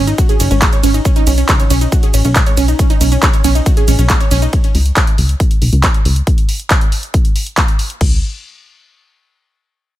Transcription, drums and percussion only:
0.07 closed hi-hat, shaker
0.18 kick, closed hi-hat, shaker
0.29 closed hi-hat, shaker
0.40 open hi-hat, ride, shaker
0.51 closed hi-hat, shaker
0.62 kick, clap, closed hi-hat, shaker
0.73 closed hi-hat, shaker
0.83 open hi-hat, ride, shaker
0.94 closed hi-hat, shaker
1.05 kick, closed hi-hat, shaker
1.16 closed hi-hat, shaker
1.27 open hi-hat, ride, shaker
1.38 closed hi-hat, shaker
1.49 kick, clap, closed hi-hat, shaker
1.60 closed hi-hat, shaker
1.70 open hi-hat, ride, shaker
1.81 closed hi-hat, shaker
1.92 kick, closed hi-hat, shaker
2.03 closed hi-hat, shaker
2.14 open hi-hat, ride, shaker
2.25 closed hi-hat, shaker
2.36 kick, clap, closed hi-hat, shaker
2.46 closed hi-hat, shaker
2.57 open hi-hat, ride, shaker
2.68 closed hi-hat, shaker
2.79 kick, closed hi-hat, shaker
2.90 closed hi-hat, shaker
3.01 open hi-hat, ride, shaker
3.12 closed hi-hat, shaker
3.23 kick, clap, closed hi-hat, shaker
3.33 closed hi-hat, shaker
3.44 open hi-hat, ride, shaker
3.55 closed hi-hat, shaker
3.66 kick, closed hi-hat, shaker
3.77 closed hi-hat, shaker
3.88 open hi-hat, ride, shaker
3.99 closed hi-hat, shaker
4.10 kick, clap, closed hi-hat, shaker
4.20 closed hi-hat, shaker
4.31 open hi-hat, ride, shaker
4.42 closed hi-hat, shaker
4.53 kick, closed hi-hat
4.64 closed hi-hat
4.75 open hi-hat
4.86 closed hi-hat
4.96 kick, clap, closed hi-hat
5.07 closed hi-hat
5.18 open hi-hat
5.29 closed hi-hat
5.40 kick, closed hi-hat
5.51 closed hi-hat
5.62 open hi-hat
5.73 closed hi-hat
5.83 kick, clap, closed hi-hat
5.94 closed hi-hat
6.05 open hi-hat
6.16 closed hi-hat
6.27 kick, closed hi-hat
6.38 closed hi-hat
6.49 open hi-hat
6.60 closed hi-hat
6.70 kick, clap, closed hi-hat
6.81 closed hi-hat
6.92 open hi-hat
7.03 closed hi-hat
7.14 kick, closed hi-hat
7.25 closed hi-hat
7.36 open hi-hat
7.46 closed hi-hat
7.57 kick, clap, closed hi-hat
7.68 closed hi-hat
7.79 open hi-hat
7.90 closed hi-hat
8.01 kick, crash

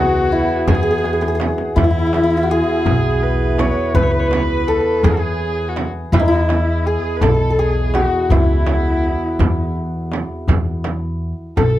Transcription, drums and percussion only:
0.31 tombak ka
0.68 tombak dum, frame drum
1.04 tombak tek
1.22 tombak ka
1.40 tombak tek, frame drum
1.58 tombak ka
1.77 tombak dum, frame drum
2.13 tombak tek, frame drum
2.86 tombak dum, frame drum
3.22 tombak ka
3.58 tombak tek, frame drum
3.95 tombak dum, frame drum
4.31 tombak tek, frame drum
5.03 tombak dum, frame drum
5.40 tombak ka
5.76 tombak tek, frame drum
6.13 tombak dum, frame drum
6.49 tombak tek, frame drum
7.21 tombak dum, frame drum
7.58 tombak ka
7.94 tombak tek, frame drum
8.30 tombak dum, frame drum
8.67 tombak tek, frame drum
9.39 tombak dum, frame drum
9.75 tombak ka
10.12 tombak tek, frame drum
10.48 tombak dum, frame drum
10.66 tombak ka
10.84 tombak tek, frame drum
11.57 tombak dum, frame drum

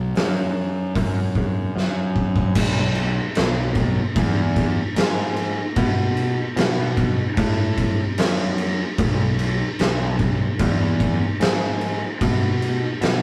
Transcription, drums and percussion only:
0.15 snare, open hi-hat
0.95 kick, open hi-hat
1.35 kick
1.77 snare
2.16 kick
2.36 kick
2.55 kick, crash
2.95 crash
3.35 snare, crash
3.75 kick, crash
4.16 kick, crash
4.56 kick, crash
4.96 snare, crash
5.36 crash
5.76 kick, crash
6.17 crash
6.57 snare, crash
6.97 kick, crash
7.37 kick, crash
7.78 kick, crash
8.18 snare, crash
8.58 crash
8.98 kick, crash
9.39 crash
9.79 snare, crash
10.19 kick, crash
10.59 kick, crash
11.00 kick, crash
11.41 snare, crash
11.81 crash
12.21 kick, crash
12.62 crash
13.02 snare, crash

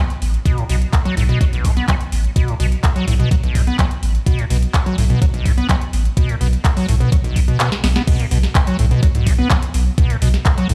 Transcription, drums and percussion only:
0.10 closed hi-hat
0.22 open hi-hat
0.34 closed hi-hat
0.46 kick, closed hi-hat
0.58 closed hi-hat
0.70 open hi-hat
0.82 closed hi-hat
0.93 kick, clap, closed hi-hat
1.06 closed hi-hat
1.17 open hi-hat
1.29 closed hi-hat
1.41 kick, closed hi-hat
1.53 closed hi-hat
1.65 kick, open hi-hat
1.77 closed hi-hat
1.88 kick, clap, closed hi-hat
2.01 closed hi-hat
2.12 open hi-hat
2.24 closed hi-hat
2.36 kick, closed hi-hat
2.48 closed hi-hat
2.60 open hi-hat
2.72 closed hi-hat
2.84 kick, clap, closed hi-hat
2.96 closed hi-hat
3.08 open hi-hat
3.20 closed hi-hat
3.31 kick, closed hi-hat
3.44 closed hi-hat
3.55 kick, open hi-hat
3.67 closed hi-hat
3.79 kick, clap, closed hi-hat
3.91 closed hi-hat
4.03 open hi-hat
4.15 closed hi-hat
4.26 kick, closed hi-hat
4.39 closed hi-hat
4.50 open hi-hat
4.63 closed hi-hat
4.74 kick, clap, closed hi-hat
4.86 closed hi-hat
4.98 open hi-hat
5.10 closed hi-hat
5.22 kick, closed hi-hat
5.34 closed hi-hat
5.46 kick, open hi-hat
5.58 closed hi-hat
5.69 kick, clap, closed hi-hat
5.82 closed hi-hat
5.93 open hi-hat
6.05 closed hi-hat
6.17 kick, closed hi-hat
6.29 closed hi-hat
6.41 open hi-hat
6.53 closed hi-hat
6.65 kick, clap, closed hi-hat
6.77 open hi-hat
6.89 open hi-hat
7.01 closed hi-hat
7.12 kick, closed hi-hat
7.24 closed hi-hat
7.36 kick, open hi-hat
7.48 closed hi-hat
7.60 clap, closed hi-hat
7.72 snare, closed hi-hat
7.84 snare, open hi-hat
7.96 snare, closed hi-hat
8.07 kick, closed hi-hat, crash
8.20 closed hi-hat
8.31 open hi-hat
8.43 snare, closed hi-hat
8.55 kick, clap, closed hi-hat
8.67 closed hi-hat
8.79 open hi-hat
8.91 closed hi-hat
9.03 kick, closed hi-hat
9.15 closed hi-hat, mid tom
9.27 kick, open hi-hat
9.50 kick, clap, closed hi-hat
9.62 closed hi-hat
9.74 open hi-hat
9.98 kick, closed hi-hat
10.10 closed hi-hat
10.22 open hi-hat
10.34 snare, closed hi-hat
10.46 kick, clap, closed hi-hat
10.58 closed hi-hat
10.69 open hi-hat

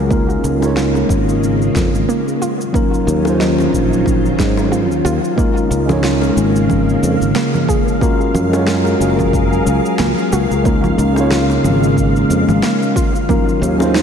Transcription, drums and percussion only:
0.11 kick, cabasa
0.30 cabasa
0.44 cabasa
0.62 high bongo, cabasa
0.77 snare, cabasa
0.95 high bongo, cabasa
1.09 kick, cabasa
1.29 cabasa
1.43 cabasa
1.62 cabasa
1.75 kick, snare, cabasa
1.95 cabasa
2.10 cabasa
2.28 cabasa
2.42 cabasa
2.61 cabasa
2.74 kick, cabasa
2.94 cabasa
3.08 cabasa
3.25 high bongo, cabasa
3.41 snare, cabasa
3.58 high bongo, cabasa
3.73 kick, cabasa
3.93 cabasa
4.06 kick, cabasa
4.26 cabasa
4.39 kick, snare, cabasa
4.57 high bongo, cabasa
4.73 cabasa
4.92 cabasa
5.06 cabasa
5.24 cabasa
5.38 kick, cabasa
5.57 cabasa
5.72 cabasa
5.89 high bongo, low conga, cabasa
6.04 snare, cabasa
6.22 high bongo, cabasa
6.38 cabasa
6.56 cabasa
6.70 kick, low conga, cabasa
6.89 cabasa
7.03 cabasa
7.22 cabasa
7.36 snare, cabasa
7.54 low conga, cabasa
7.68 kick, cabasa
7.88 cabasa
8.01 kick, cabasa
8.21 cabasa
8.35 low conga, cabasa
8.53 high bongo, cabasa
8.67 snare, cabasa
8.85 high bongo, cabasa
9.01 cabasa
9.19 kick, low conga, cabasa
9.33 kick, cabasa
9.53 cabasa
9.67 cabasa
9.85 cabasa
9.99 snare, low conga, cabasa
10.18 cabasa
10.33 cabasa
10.51 cabasa
10.65 kick, cabasa
10.84 low conga, cabasa
10.99 cabasa
11.16 high bongo, cabasa
11.31 snare, cabasa
11.50 high bongo, cabasa
11.64 low conga, cabasa
11.83 cabasa
11.97 kick, cabasa
12.16 cabasa
12.31 cabasa
12.49 low conga, cabasa
12.63 snare, cabasa
12.82 cabasa
12.96 kick, cabasa
13.15 cabasa
13.29 kick, low conga, cabasa
13.49 cabasa
13.63 cabasa
13.80 high bongo, cabasa
13.95 snare, cabasa

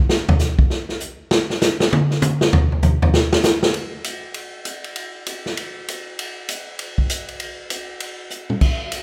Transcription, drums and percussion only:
0.09 snare
0.29 floor tom
0.39 snare, hi-hat pedal
0.59 kick
0.70 snare
0.89 snare
1.00 hi-hat pedal
1.31 snare
1.50 snare
1.61 snare, hi-hat pedal
1.80 snare
1.93 high tom
2.11 snare
2.22 hi-hat pedal, high tom
2.41 snare
2.53 floor tom
2.72 floor tom
2.82 floor tom, hi-hat pedal
3.02 floor tom
3.14 snare
3.33 snare
3.43 snare, hi-hat pedal
3.63 snare
3.74 ride
4.04 hi-hat pedal, ride
4.34 ride
4.65 hi-hat pedal, ride
4.84 ride
4.96 ride
5.26 hi-hat pedal, ride
5.46 snare
5.57 ride
5.88 hi-hat pedal, ride
6.19 ride
6.49 hi-hat pedal, ride
6.79 ride
6.98 kick
7.10 hi-hat pedal, ride
7.28 ride
7.40 ride
7.70 hi-hat pedal, ride
8.00 ride
8.30 hi-hat pedal
8.50 mid tom
8.61 kick, crash
8.92 hi-hat pedal, ride

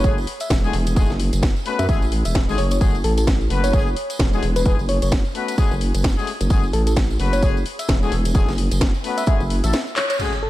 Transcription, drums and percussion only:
0.04 kick, closed hi-hat, tambourine
0.18 tambourine
0.27 open hi-hat
0.40 closed hi-hat, tambourine
0.50 kick, snare, closed hi-hat, tambourine
0.64 tambourine
0.73 open hi-hat
0.87 closed hi-hat, tambourine
0.96 kick, closed hi-hat, tambourine
1.10 snare, tambourine
1.20 open hi-hat
1.33 closed hi-hat, tambourine
1.43 kick, snare, closed hi-hat, tambourine
1.56 tambourine
1.66 open hi-hat
1.79 closed hi-hat, tambourine
1.89 kick, closed hi-hat, tambourine
2.02 tambourine
2.12 open hi-hat
2.25 closed hi-hat, tambourine
2.35 kick, snare, closed hi-hat
2.49 tambourine
2.58 open hi-hat
2.71 closed hi-hat, tambourine
2.81 kick, closed hi-hat, tambourine
2.95 tambourine
3.04 open hi-hat
3.17 closed hi-hat, tambourine
3.27 kick, snare, closed hi-hat, tambourine
3.41 tambourine
3.50 open hi-hat
3.64 closed hi-hat, tambourine
3.73 kick, closed hi-hat, tambourine
3.87 tambourine
3.96 open hi-hat
4.10 closed hi-hat, tambourine
4.19 kick, snare, closed hi-hat, tambourine
4.33 tambourine
4.43 open hi-hat
4.56 closed hi-hat, tambourine
4.65 kick, closed hi-hat, tambourine
4.79 tambourine
4.89 open hi-hat
5.02 closed hi-hat, tambourine
5.11 kick, snare, closed hi-hat, tambourine
5.25 tambourine
5.35 open hi-hat
5.48 closed hi-hat, tambourine
5.58 kick, closed hi-hat, tambourine
5.71 tambourine
5.81 open hi-hat
5.95 closed hi-hat, tambourine
6.04 kick, snare, closed hi-hat, tambourine
6.19 tambourine
6.27 open hi-hat
6.41 closed hi-hat, tambourine
6.50 kick, closed hi-hat, tambourine
6.64 tambourine
6.73 open hi-hat
6.87 closed hi-hat, tambourine
6.96 kick, snare, closed hi-hat, tambourine
7.10 tambourine
7.20 open hi-hat
7.33 closed hi-hat, tambourine
7.43 kick, closed hi-hat, tambourine
7.57 tambourine
7.66 open hi-hat
7.79 closed hi-hat, tambourine
7.88 kick, snare, closed hi-hat, tambourine
8.03 tambourine
8.12 open hi-hat
8.25 closed hi-hat, tambourine
8.34 kick, closed hi-hat, tambourine
8.48 snare, tambourine
8.58 open hi-hat
8.71 closed hi-hat, tambourine
8.81 kick, snare, closed hi-hat, tambourine
8.94 tambourine
9.04 open hi-hat
9.18 closed hi-hat, tambourine
9.26 kick, closed hi-hat, tambourine
9.40 tambourine
9.50 open hi-hat
9.64 closed hi-hat, tambourine
9.73 snare, closed hi-hat, tambourine
9.87 tambourine
9.96 clap, open hi-hat
10.10 closed hi-hat, tambourine
10.20 tambourine, crash
10.32 tambourine

